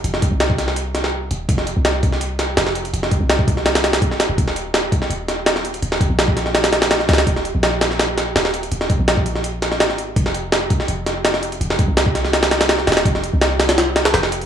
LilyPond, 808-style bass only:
\new Staff \with { instrumentName = "808-style bass" } { \clef bass \time 4/4 \key ees \mixolydian \tempo 4 = 166 f,,8. c,2~ c,8. ees,,8 | f,,8. c,2~ c,16 f,,4 | f,,8. c,2~ c,16 aes,,8. ees,,16 | ees,,4. r8 ees,,2 |
ees,,8. bes,,2~ bes,,8. des,8 | ees,,8. bes,,2~ bes,,16 ees,,4 | ees,,8. bes,,2~ bes,,16 aes,,4 | f,,4. r8 f,,2 |
f,,8. c,2~ c,8. ees,,8 | f,,8. c,2~ c,16 f,,4 | }